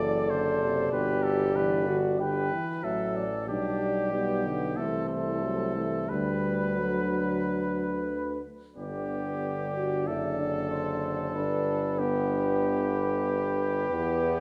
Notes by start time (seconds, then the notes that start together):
Already playing: F#1 E3 A4 D5
0.30 D3 C5
0.60 C3
0.92 G1 B2 G4 B4
1.23 A4
1.56 E3 B4 D5
1.87 D3 F#4
2.19 D3 G4 B4 G5
2.52 E3
2.83 A1 F#3 A4 E5
3.16 D5
3.47 B1 G3 D4 G4 D5
4.12 G3 B3
4.45 D3
4.77 C2 E3 A3 A4 C5
5.09 A4
5.43 F#3
5.76 E3 A3
6.09 D2 D3 G3 B4
6.77 F#3
8.76 G1 D3 B3 G4 D5
9.74 F#4
10.06 F#1 E4 A4
10.39 D4
10.72 C5
11.34 G1 D4 B4
11.99 B3 G4
13.90 E2 E3 B3